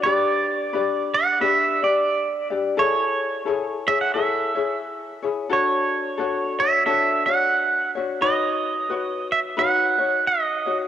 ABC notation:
X:1
M:4/4
L:1/16
Q:"Swing" 1/4=88
K:A
V:1 name="Pedal steel guitar"
d6 f2 e2 d4 z2 | c4 z2 e f e4 z4 | c6 e2 e2 f4 z2 | ^d6 e2 f4 d3 z |]
V:2 name="Ukulele"
[D=GBd]4 [DGBd]4 [DGBd]2 [DGd]4 [DGd]2 | [EGAc]4 [EGAc]2 [EGc]2 [EGAc]2 [EGc]4 [EGc]2 | [DFAc]4 [DFAc]2 [DFc]2 [DFAc]2 [DFc]4 [DFc]2 | [^DFBc]4 [FBc]4 [DFBc]2 [DFc]4 [DFc]2 |]